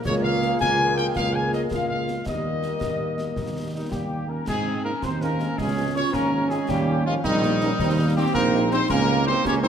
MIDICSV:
0, 0, Header, 1, 9, 480
1, 0, Start_track
1, 0, Tempo, 368550
1, 70, Time_signature, 6, 3, 24, 8
1, 12607, End_track
2, 0, Start_track
2, 0, Title_t, "Flute section"
2, 0, Program_c, 0, 73
2, 66, Note_on_c, 0, 73, 126
2, 291, Note_off_c, 0, 73, 0
2, 297, Note_on_c, 0, 77, 127
2, 784, Note_off_c, 0, 77, 0
2, 786, Note_on_c, 0, 80, 124
2, 1234, Note_off_c, 0, 80, 0
2, 1256, Note_on_c, 0, 79, 118
2, 1491, Note_on_c, 0, 77, 106
2, 1503, Note_off_c, 0, 79, 0
2, 1570, Note_off_c, 0, 77, 0
2, 1743, Note_on_c, 0, 80, 107
2, 1821, Note_off_c, 0, 80, 0
2, 1988, Note_on_c, 0, 75, 94
2, 2212, Note_off_c, 0, 75, 0
2, 2231, Note_on_c, 0, 77, 91
2, 2454, Note_off_c, 0, 77, 0
2, 2470, Note_on_c, 0, 77, 87
2, 2916, Note_off_c, 0, 77, 0
2, 2949, Note_on_c, 0, 75, 89
2, 4529, Note_off_c, 0, 75, 0
2, 4869, Note_on_c, 0, 75, 68
2, 4947, Note_off_c, 0, 75, 0
2, 5099, Note_on_c, 0, 79, 78
2, 5551, Note_off_c, 0, 79, 0
2, 5583, Note_on_c, 0, 82, 85
2, 5817, Note_on_c, 0, 80, 99
2, 5826, Note_off_c, 0, 82, 0
2, 6298, Note_on_c, 0, 82, 93
2, 6304, Note_off_c, 0, 80, 0
2, 6376, Note_off_c, 0, 82, 0
2, 6542, Note_on_c, 0, 84, 109
2, 6620, Note_off_c, 0, 84, 0
2, 6798, Note_on_c, 0, 82, 89
2, 7241, Note_off_c, 0, 82, 0
2, 7266, Note_on_c, 0, 80, 104
2, 7714, Note_off_c, 0, 80, 0
2, 7745, Note_on_c, 0, 85, 106
2, 7963, Note_on_c, 0, 82, 113
2, 7971, Note_off_c, 0, 85, 0
2, 8422, Note_off_c, 0, 82, 0
2, 8464, Note_on_c, 0, 80, 99
2, 8542, Note_off_c, 0, 80, 0
2, 8706, Note_on_c, 0, 79, 102
2, 9155, Note_off_c, 0, 79, 0
2, 9193, Note_on_c, 0, 77, 106
2, 9415, Note_off_c, 0, 77, 0
2, 9436, Note_on_c, 0, 75, 119
2, 10219, Note_off_c, 0, 75, 0
2, 10632, Note_on_c, 0, 79, 118
2, 10871, Note_on_c, 0, 82, 122
2, 10872, Note_off_c, 0, 79, 0
2, 11352, Note_off_c, 0, 82, 0
2, 11359, Note_on_c, 0, 84, 127
2, 11579, Note_off_c, 0, 84, 0
2, 11604, Note_on_c, 0, 82, 127
2, 12063, Note_on_c, 0, 84, 116
2, 12079, Note_off_c, 0, 82, 0
2, 12307, Note_on_c, 0, 85, 127
2, 12308, Note_off_c, 0, 84, 0
2, 12385, Note_off_c, 0, 85, 0
2, 12556, Note_on_c, 0, 84, 116
2, 12607, Note_off_c, 0, 84, 0
2, 12607, End_track
3, 0, Start_track
3, 0, Title_t, "Trumpet section"
3, 0, Program_c, 1, 61
3, 64, Note_on_c, 1, 73, 127
3, 173, Note_off_c, 1, 73, 0
3, 299, Note_on_c, 1, 77, 127
3, 750, Note_off_c, 1, 77, 0
3, 776, Note_on_c, 1, 80, 127
3, 1229, Note_off_c, 1, 80, 0
3, 1267, Note_on_c, 1, 79, 124
3, 1376, Note_off_c, 1, 79, 0
3, 1508, Note_on_c, 1, 77, 127
3, 1732, Note_off_c, 1, 77, 0
3, 1747, Note_on_c, 1, 80, 116
3, 1989, Note_off_c, 1, 80, 0
3, 1996, Note_on_c, 1, 75, 109
3, 2102, Note_off_c, 1, 75, 0
3, 2234, Note_on_c, 1, 77, 99
3, 2443, Note_off_c, 1, 77, 0
3, 2459, Note_on_c, 1, 77, 114
3, 2910, Note_off_c, 1, 77, 0
3, 2949, Note_on_c, 1, 75, 107
3, 4818, Note_off_c, 1, 75, 0
3, 4866, Note_on_c, 1, 63, 77
3, 5091, Note_off_c, 1, 63, 0
3, 5102, Note_on_c, 1, 67, 84
3, 5586, Note_off_c, 1, 67, 0
3, 5598, Note_on_c, 1, 70, 84
3, 5822, Note_on_c, 1, 68, 116
3, 5834, Note_off_c, 1, 70, 0
3, 6272, Note_off_c, 1, 68, 0
3, 6308, Note_on_c, 1, 70, 103
3, 6532, Note_off_c, 1, 70, 0
3, 6555, Note_on_c, 1, 72, 103
3, 6793, Note_off_c, 1, 72, 0
3, 6793, Note_on_c, 1, 70, 117
3, 7272, Note_off_c, 1, 70, 0
3, 7274, Note_on_c, 1, 68, 120
3, 7752, Note_off_c, 1, 68, 0
3, 7753, Note_on_c, 1, 73, 117
3, 7975, Note_off_c, 1, 73, 0
3, 7990, Note_on_c, 1, 70, 112
3, 8463, Note_on_c, 1, 68, 113
3, 8471, Note_off_c, 1, 70, 0
3, 8707, Note_off_c, 1, 68, 0
3, 8708, Note_on_c, 1, 67, 127
3, 9178, Note_on_c, 1, 65, 126
3, 9190, Note_off_c, 1, 67, 0
3, 9289, Note_off_c, 1, 65, 0
3, 9410, Note_on_c, 1, 63, 127
3, 10569, Note_off_c, 1, 63, 0
3, 10621, Note_on_c, 1, 67, 127
3, 10867, Note_off_c, 1, 67, 0
3, 10870, Note_on_c, 1, 70, 127
3, 11317, Note_off_c, 1, 70, 0
3, 11353, Note_on_c, 1, 72, 127
3, 11576, Note_off_c, 1, 72, 0
3, 11584, Note_on_c, 1, 70, 127
3, 12035, Note_off_c, 1, 70, 0
3, 12068, Note_on_c, 1, 72, 127
3, 12294, Note_off_c, 1, 72, 0
3, 12314, Note_on_c, 1, 73, 123
3, 12422, Note_off_c, 1, 73, 0
3, 12540, Note_on_c, 1, 72, 127
3, 12607, Note_off_c, 1, 72, 0
3, 12607, End_track
4, 0, Start_track
4, 0, Title_t, "Woodwind section"
4, 0, Program_c, 2, 71
4, 62, Note_on_c, 2, 68, 105
4, 62, Note_on_c, 2, 70, 92
4, 735, Note_off_c, 2, 70, 0
4, 768, Note_off_c, 2, 68, 0
4, 784, Note_on_c, 2, 68, 99
4, 784, Note_on_c, 2, 70, 95
4, 1456, Note_off_c, 2, 68, 0
4, 1456, Note_off_c, 2, 70, 0
4, 1504, Note_on_c, 2, 68, 91
4, 1505, Note_on_c, 2, 70, 92
4, 2176, Note_off_c, 2, 68, 0
4, 2177, Note_off_c, 2, 70, 0
4, 2202, Note_on_c, 2, 70, 79
4, 2206, Note_on_c, 2, 68, 73
4, 2885, Note_off_c, 2, 70, 0
4, 2887, Note_off_c, 2, 68, 0
4, 2956, Note_on_c, 2, 70, 66
4, 2962, Note_on_c, 2, 67, 70
4, 4821, Note_off_c, 2, 70, 0
4, 4876, Note_off_c, 2, 67, 0
4, 4876, Note_on_c, 2, 55, 67
4, 4983, Note_off_c, 2, 55, 0
4, 5105, Note_on_c, 2, 58, 76
4, 5554, Note_off_c, 2, 58, 0
4, 5588, Note_on_c, 2, 61, 83
4, 5812, Note_off_c, 2, 61, 0
4, 5832, Note_on_c, 2, 60, 105
4, 6302, Note_on_c, 2, 61, 106
4, 6311, Note_off_c, 2, 60, 0
4, 6546, Note_off_c, 2, 61, 0
4, 6567, Note_on_c, 2, 63, 117
4, 6793, Note_on_c, 2, 61, 104
4, 6799, Note_off_c, 2, 63, 0
4, 7238, Note_off_c, 2, 61, 0
4, 7276, Note_on_c, 2, 61, 105
4, 7720, Note_off_c, 2, 61, 0
4, 7756, Note_on_c, 2, 65, 116
4, 7990, Note_on_c, 2, 61, 120
4, 7993, Note_off_c, 2, 65, 0
4, 8437, Note_off_c, 2, 61, 0
4, 8468, Note_on_c, 2, 60, 85
4, 8576, Note_off_c, 2, 60, 0
4, 8734, Note_on_c, 2, 58, 111
4, 9170, Note_off_c, 2, 58, 0
4, 9190, Note_on_c, 2, 56, 113
4, 9298, Note_off_c, 2, 56, 0
4, 9457, Note_on_c, 2, 55, 121
4, 10593, Note_off_c, 2, 55, 0
4, 10636, Note_on_c, 2, 58, 127
4, 10857, Note_off_c, 2, 58, 0
4, 10883, Note_on_c, 2, 63, 127
4, 11335, Note_off_c, 2, 63, 0
4, 11351, Note_on_c, 2, 63, 127
4, 11575, Note_off_c, 2, 63, 0
4, 11596, Note_on_c, 2, 61, 127
4, 12041, Note_off_c, 2, 61, 0
4, 12069, Note_on_c, 2, 63, 126
4, 12294, Note_off_c, 2, 63, 0
4, 12317, Note_on_c, 2, 67, 127
4, 12424, Note_off_c, 2, 67, 0
4, 12550, Note_on_c, 2, 63, 124
4, 12607, Note_off_c, 2, 63, 0
4, 12607, End_track
5, 0, Start_track
5, 0, Title_t, "Euphonium"
5, 0, Program_c, 3, 58
5, 4869, Note_on_c, 3, 51, 67
5, 5093, Note_off_c, 3, 51, 0
5, 5107, Note_on_c, 3, 55, 80
5, 5574, Note_on_c, 3, 58, 75
5, 5594, Note_off_c, 3, 55, 0
5, 5815, Note_off_c, 3, 58, 0
5, 5823, Note_on_c, 3, 56, 88
5, 6273, Note_off_c, 3, 56, 0
5, 6294, Note_on_c, 3, 58, 93
5, 6406, Note_off_c, 3, 58, 0
5, 6552, Note_on_c, 3, 60, 106
5, 6660, Note_off_c, 3, 60, 0
5, 6800, Note_on_c, 3, 58, 100
5, 7242, Note_off_c, 3, 58, 0
5, 7264, Note_on_c, 3, 56, 99
5, 7714, Note_off_c, 3, 56, 0
5, 7742, Note_on_c, 3, 61, 101
5, 7987, Note_on_c, 3, 58, 115
5, 8006, Note_off_c, 3, 61, 0
5, 8461, Note_off_c, 3, 58, 0
5, 8469, Note_on_c, 3, 56, 91
5, 8693, Note_off_c, 3, 56, 0
5, 8717, Note_on_c, 3, 55, 115
5, 9197, Note_on_c, 3, 53, 103
5, 9217, Note_off_c, 3, 55, 0
5, 9426, Note_off_c, 3, 53, 0
5, 9434, Note_on_c, 3, 51, 123
5, 10581, Note_off_c, 3, 51, 0
5, 10614, Note_on_c, 3, 55, 109
5, 10726, Note_off_c, 3, 55, 0
5, 10857, Note_on_c, 3, 58, 127
5, 11311, Note_off_c, 3, 58, 0
5, 11357, Note_on_c, 3, 60, 122
5, 11464, Note_off_c, 3, 60, 0
5, 11605, Note_on_c, 3, 58, 120
5, 12046, Note_off_c, 3, 58, 0
5, 12087, Note_on_c, 3, 60, 122
5, 12304, Note_off_c, 3, 60, 0
5, 12319, Note_on_c, 3, 61, 127
5, 12534, Note_off_c, 3, 61, 0
5, 12542, Note_on_c, 3, 60, 121
5, 12607, Note_off_c, 3, 60, 0
5, 12607, End_track
6, 0, Start_track
6, 0, Title_t, "French horn section"
6, 0, Program_c, 4, 60
6, 62, Note_on_c, 4, 58, 95
6, 66, Note_on_c, 4, 56, 99
6, 66, Note_on_c, 4, 65, 103
6, 735, Note_off_c, 4, 58, 0
6, 737, Note_off_c, 4, 56, 0
6, 738, Note_off_c, 4, 65, 0
6, 785, Note_on_c, 4, 58, 100
6, 788, Note_on_c, 4, 65, 101
6, 790, Note_on_c, 4, 56, 95
6, 1457, Note_off_c, 4, 58, 0
6, 1458, Note_off_c, 4, 65, 0
6, 1459, Note_off_c, 4, 56, 0
6, 1497, Note_on_c, 4, 65, 91
6, 1500, Note_on_c, 4, 58, 88
6, 1501, Note_on_c, 4, 56, 92
6, 2173, Note_off_c, 4, 65, 0
6, 2174, Note_off_c, 4, 58, 0
6, 2175, Note_off_c, 4, 56, 0
6, 2207, Note_on_c, 4, 56, 81
6, 2208, Note_on_c, 4, 58, 85
6, 2209, Note_on_c, 4, 65, 75
6, 2888, Note_off_c, 4, 56, 0
6, 2888, Note_off_c, 4, 58, 0
6, 2889, Note_off_c, 4, 65, 0
6, 2927, Note_on_c, 4, 55, 71
6, 2934, Note_on_c, 4, 70, 76
6, 2935, Note_on_c, 4, 58, 73
6, 5531, Note_off_c, 4, 58, 0
6, 5579, Note_off_c, 4, 55, 0
6, 5582, Note_off_c, 4, 70, 0
6, 6061, Note_on_c, 4, 56, 74
6, 6062, Note_on_c, 4, 63, 77
6, 6063, Note_on_c, 4, 60, 76
6, 6150, Note_off_c, 4, 56, 0
6, 6150, Note_off_c, 4, 63, 0
6, 6151, Note_off_c, 4, 60, 0
6, 6294, Note_on_c, 4, 56, 74
6, 6296, Note_on_c, 4, 60, 75
6, 6298, Note_on_c, 4, 63, 72
6, 6384, Note_off_c, 4, 56, 0
6, 6385, Note_off_c, 4, 60, 0
6, 6387, Note_off_c, 4, 63, 0
6, 6785, Note_on_c, 4, 60, 80
6, 6786, Note_on_c, 4, 56, 73
6, 6790, Note_on_c, 4, 63, 81
6, 6873, Note_off_c, 4, 56, 0
6, 6873, Note_off_c, 4, 60, 0
6, 6876, Note_off_c, 4, 63, 0
6, 7016, Note_on_c, 4, 56, 83
6, 7018, Note_on_c, 4, 63, 75
6, 7019, Note_on_c, 4, 60, 78
6, 7105, Note_off_c, 4, 56, 0
6, 7108, Note_off_c, 4, 60, 0
6, 7108, Note_off_c, 4, 63, 0
6, 7508, Note_on_c, 4, 65, 81
6, 7514, Note_on_c, 4, 56, 81
6, 7519, Note_on_c, 4, 61, 87
6, 7595, Note_off_c, 4, 65, 0
6, 7599, Note_off_c, 4, 56, 0
6, 7604, Note_off_c, 4, 61, 0
6, 7744, Note_on_c, 4, 61, 76
6, 7745, Note_on_c, 4, 56, 79
6, 7749, Note_on_c, 4, 65, 83
6, 7832, Note_off_c, 4, 61, 0
6, 7833, Note_off_c, 4, 56, 0
6, 7836, Note_off_c, 4, 65, 0
6, 8222, Note_on_c, 4, 65, 80
6, 8225, Note_on_c, 4, 61, 83
6, 8229, Note_on_c, 4, 56, 85
6, 8310, Note_off_c, 4, 65, 0
6, 8313, Note_off_c, 4, 61, 0
6, 8316, Note_off_c, 4, 56, 0
6, 8460, Note_on_c, 4, 56, 89
6, 8463, Note_on_c, 4, 61, 86
6, 8466, Note_on_c, 4, 65, 90
6, 8549, Note_off_c, 4, 56, 0
6, 8551, Note_off_c, 4, 61, 0
6, 8553, Note_off_c, 4, 65, 0
6, 8950, Note_on_c, 4, 63, 84
6, 8954, Note_on_c, 4, 55, 86
6, 8955, Note_on_c, 4, 58, 91
6, 9037, Note_off_c, 4, 63, 0
6, 9040, Note_off_c, 4, 55, 0
6, 9041, Note_off_c, 4, 58, 0
6, 9196, Note_on_c, 4, 58, 88
6, 9197, Note_on_c, 4, 63, 85
6, 9200, Note_on_c, 4, 55, 84
6, 9281, Note_off_c, 4, 58, 0
6, 9282, Note_off_c, 4, 63, 0
6, 9285, Note_off_c, 4, 55, 0
6, 9672, Note_on_c, 4, 55, 88
6, 9674, Note_on_c, 4, 63, 90
6, 9675, Note_on_c, 4, 58, 96
6, 9758, Note_off_c, 4, 55, 0
6, 9760, Note_off_c, 4, 58, 0
6, 9760, Note_off_c, 4, 63, 0
6, 9910, Note_on_c, 4, 55, 97
6, 9912, Note_on_c, 4, 63, 99
6, 9916, Note_on_c, 4, 58, 100
6, 9997, Note_off_c, 4, 55, 0
6, 9998, Note_off_c, 4, 63, 0
6, 10001, Note_off_c, 4, 58, 0
6, 10385, Note_on_c, 4, 55, 91
6, 10389, Note_on_c, 4, 63, 98
6, 10393, Note_on_c, 4, 58, 98
6, 10473, Note_off_c, 4, 55, 0
6, 10476, Note_off_c, 4, 63, 0
6, 10479, Note_off_c, 4, 58, 0
6, 10617, Note_on_c, 4, 55, 95
6, 10622, Note_on_c, 4, 63, 98
6, 10626, Note_on_c, 4, 58, 94
6, 10707, Note_off_c, 4, 55, 0
6, 10710, Note_off_c, 4, 63, 0
6, 10714, Note_off_c, 4, 58, 0
6, 11100, Note_on_c, 4, 63, 102
6, 11101, Note_on_c, 4, 55, 92
6, 11102, Note_on_c, 4, 58, 98
6, 11189, Note_off_c, 4, 63, 0
6, 11190, Note_off_c, 4, 55, 0
6, 11190, Note_off_c, 4, 58, 0
6, 11332, Note_on_c, 4, 55, 97
6, 11334, Note_on_c, 4, 63, 102
6, 11337, Note_on_c, 4, 58, 92
6, 11423, Note_off_c, 4, 55, 0
6, 11425, Note_off_c, 4, 63, 0
6, 11427, Note_off_c, 4, 58, 0
6, 11819, Note_on_c, 4, 63, 98
6, 11823, Note_on_c, 4, 55, 92
6, 11823, Note_on_c, 4, 58, 93
6, 11908, Note_off_c, 4, 63, 0
6, 11911, Note_off_c, 4, 58, 0
6, 11912, Note_off_c, 4, 55, 0
6, 12067, Note_on_c, 4, 58, 91
6, 12069, Note_on_c, 4, 55, 93
6, 12070, Note_on_c, 4, 63, 92
6, 12155, Note_off_c, 4, 58, 0
6, 12157, Note_off_c, 4, 55, 0
6, 12157, Note_off_c, 4, 63, 0
6, 12541, Note_on_c, 4, 63, 92
6, 12544, Note_on_c, 4, 55, 85
6, 12546, Note_on_c, 4, 58, 94
6, 12607, Note_off_c, 4, 55, 0
6, 12607, Note_off_c, 4, 58, 0
6, 12607, Note_off_c, 4, 63, 0
6, 12607, End_track
7, 0, Start_track
7, 0, Title_t, "Trombone section"
7, 0, Program_c, 5, 61
7, 67, Note_on_c, 5, 56, 106
7, 76, Note_on_c, 5, 58, 110
7, 2718, Note_off_c, 5, 56, 0
7, 2718, Note_off_c, 5, 58, 0
7, 2939, Note_on_c, 5, 58, 71
7, 2946, Note_on_c, 5, 55, 75
7, 5533, Note_off_c, 5, 58, 0
7, 5536, Note_off_c, 5, 55, 0
7, 6540, Note_on_c, 5, 60, 90
7, 7215, Note_off_c, 5, 60, 0
7, 7271, Note_on_c, 5, 61, 110
7, 9432, Note_off_c, 5, 61, 0
7, 9432, Note_on_c, 5, 60, 115
7, 9672, Note_off_c, 5, 60, 0
7, 9687, Note_on_c, 5, 58, 100
7, 9791, Note_off_c, 5, 58, 0
7, 9918, Note_on_c, 5, 61, 96
7, 10024, Note_off_c, 5, 61, 0
7, 10167, Note_on_c, 5, 60, 104
7, 10383, Note_off_c, 5, 60, 0
7, 10407, Note_on_c, 5, 58, 97
7, 10640, Note_off_c, 5, 58, 0
7, 10650, Note_on_c, 5, 60, 119
7, 11549, Note_off_c, 5, 60, 0
7, 11581, Note_on_c, 5, 58, 124
7, 12607, Note_off_c, 5, 58, 0
7, 12607, End_track
8, 0, Start_track
8, 0, Title_t, "Tuba"
8, 0, Program_c, 6, 58
8, 77, Note_on_c, 6, 37, 108
8, 709, Note_off_c, 6, 37, 0
8, 793, Note_on_c, 6, 37, 97
8, 1427, Note_off_c, 6, 37, 0
8, 1508, Note_on_c, 6, 37, 101
8, 2144, Note_off_c, 6, 37, 0
8, 2230, Note_on_c, 6, 37, 76
8, 2865, Note_off_c, 6, 37, 0
8, 2954, Note_on_c, 6, 39, 78
8, 3587, Note_off_c, 6, 39, 0
8, 3667, Note_on_c, 6, 39, 64
8, 4304, Note_off_c, 6, 39, 0
8, 4395, Note_on_c, 6, 39, 69
8, 5028, Note_off_c, 6, 39, 0
8, 5108, Note_on_c, 6, 39, 67
8, 5744, Note_off_c, 6, 39, 0
8, 5838, Note_on_c, 6, 44, 90
8, 6434, Note_off_c, 6, 44, 0
8, 6558, Note_on_c, 6, 39, 85
8, 7105, Note_off_c, 6, 39, 0
8, 7283, Note_on_c, 6, 37, 95
8, 7877, Note_off_c, 6, 37, 0
8, 8005, Note_on_c, 6, 32, 85
8, 8598, Note_off_c, 6, 32, 0
8, 8714, Note_on_c, 6, 39, 100
8, 9312, Note_off_c, 6, 39, 0
8, 9430, Note_on_c, 6, 34, 106
8, 10030, Note_off_c, 6, 34, 0
8, 10153, Note_on_c, 6, 39, 115
8, 10752, Note_off_c, 6, 39, 0
8, 10871, Note_on_c, 6, 34, 112
8, 11472, Note_off_c, 6, 34, 0
8, 11589, Note_on_c, 6, 37, 122
8, 12191, Note_off_c, 6, 37, 0
8, 12318, Note_on_c, 6, 37, 108
8, 12607, Note_off_c, 6, 37, 0
8, 12607, End_track
9, 0, Start_track
9, 0, Title_t, "Drums"
9, 69, Note_on_c, 9, 35, 92
9, 69, Note_on_c, 9, 38, 84
9, 69, Note_on_c, 9, 49, 38
9, 199, Note_off_c, 9, 35, 0
9, 199, Note_off_c, 9, 38, 0
9, 199, Note_off_c, 9, 49, 0
9, 550, Note_on_c, 9, 38, 56
9, 680, Note_off_c, 9, 38, 0
9, 791, Note_on_c, 9, 35, 82
9, 791, Note_on_c, 9, 38, 84
9, 921, Note_off_c, 9, 35, 0
9, 921, Note_off_c, 9, 38, 0
9, 1273, Note_on_c, 9, 38, 60
9, 1403, Note_off_c, 9, 38, 0
9, 1512, Note_on_c, 9, 35, 90
9, 1512, Note_on_c, 9, 38, 77
9, 1642, Note_off_c, 9, 35, 0
9, 1642, Note_off_c, 9, 38, 0
9, 1993, Note_on_c, 9, 38, 56
9, 2124, Note_off_c, 9, 38, 0
9, 2230, Note_on_c, 9, 35, 81
9, 2230, Note_on_c, 9, 38, 78
9, 2360, Note_off_c, 9, 35, 0
9, 2360, Note_off_c, 9, 38, 0
9, 2709, Note_on_c, 9, 38, 56
9, 2839, Note_off_c, 9, 38, 0
9, 2947, Note_on_c, 9, 35, 86
9, 2947, Note_on_c, 9, 38, 77
9, 2947, Note_on_c, 9, 49, 30
9, 3078, Note_off_c, 9, 35, 0
9, 3078, Note_off_c, 9, 38, 0
9, 3078, Note_off_c, 9, 49, 0
9, 3420, Note_on_c, 9, 38, 55
9, 3550, Note_off_c, 9, 38, 0
9, 3661, Note_on_c, 9, 35, 79
9, 3661, Note_on_c, 9, 38, 81
9, 3792, Note_off_c, 9, 35, 0
9, 3792, Note_off_c, 9, 38, 0
9, 4143, Note_on_c, 9, 38, 59
9, 4273, Note_off_c, 9, 38, 0
9, 4381, Note_on_c, 9, 35, 82
9, 4381, Note_on_c, 9, 38, 65
9, 4511, Note_off_c, 9, 35, 0
9, 4511, Note_off_c, 9, 38, 0
9, 5102, Note_on_c, 9, 35, 74
9, 5102, Note_on_c, 9, 38, 71
9, 5232, Note_off_c, 9, 35, 0
9, 5232, Note_off_c, 9, 38, 0
9, 5828, Note_on_c, 9, 35, 87
9, 5828, Note_on_c, 9, 38, 84
9, 5828, Note_on_c, 9, 49, 59
9, 5958, Note_off_c, 9, 35, 0
9, 5958, Note_off_c, 9, 38, 0
9, 5958, Note_off_c, 9, 49, 0
9, 6545, Note_on_c, 9, 35, 89
9, 6545, Note_on_c, 9, 38, 79
9, 6675, Note_off_c, 9, 35, 0
9, 6675, Note_off_c, 9, 38, 0
9, 6790, Note_on_c, 9, 38, 62
9, 6921, Note_off_c, 9, 38, 0
9, 7026, Note_on_c, 9, 38, 58
9, 7156, Note_off_c, 9, 38, 0
9, 7271, Note_on_c, 9, 35, 90
9, 7271, Note_on_c, 9, 38, 74
9, 7401, Note_off_c, 9, 35, 0
9, 7401, Note_off_c, 9, 38, 0
9, 7990, Note_on_c, 9, 35, 82
9, 7990, Note_on_c, 9, 38, 81
9, 8120, Note_off_c, 9, 35, 0
9, 8120, Note_off_c, 9, 38, 0
9, 8472, Note_on_c, 9, 38, 64
9, 8602, Note_off_c, 9, 38, 0
9, 8710, Note_on_c, 9, 35, 89
9, 8710, Note_on_c, 9, 38, 82
9, 8710, Note_on_c, 9, 49, 35
9, 8841, Note_off_c, 9, 35, 0
9, 8841, Note_off_c, 9, 38, 0
9, 8841, Note_off_c, 9, 49, 0
9, 9432, Note_on_c, 9, 35, 86
9, 9432, Note_on_c, 9, 38, 84
9, 9562, Note_off_c, 9, 35, 0
9, 9562, Note_off_c, 9, 38, 0
9, 9673, Note_on_c, 9, 38, 60
9, 9804, Note_off_c, 9, 38, 0
9, 9908, Note_on_c, 9, 38, 63
9, 10039, Note_off_c, 9, 38, 0
9, 10150, Note_on_c, 9, 35, 93
9, 10150, Note_on_c, 9, 38, 78
9, 10281, Note_off_c, 9, 35, 0
9, 10281, Note_off_c, 9, 38, 0
9, 10869, Note_on_c, 9, 35, 81
9, 10869, Note_on_c, 9, 38, 81
9, 11000, Note_off_c, 9, 35, 0
9, 11000, Note_off_c, 9, 38, 0
9, 11348, Note_on_c, 9, 38, 65
9, 11478, Note_off_c, 9, 38, 0
9, 11587, Note_on_c, 9, 35, 94
9, 11587, Note_on_c, 9, 38, 84
9, 11587, Note_on_c, 9, 49, 34
9, 11717, Note_off_c, 9, 35, 0
9, 11717, Note_off_c, 9, 38, 0
9, 11717, Note_off_c, 9, 49, 0
9, 12309, Note_on_c, 9, 35, 84
9, 12309, Note_on_c, 9, 38, 88
9, 12439, Note_off_c, 9, 35, 0
9, 12439, Note_off_c, 9, 38, 0
9, 12548, Note_on_c, 9, 38, 59
9, 12607, Note_off_c, 9, 38, 0
9, 12607, End_track
0, 0, End_of_file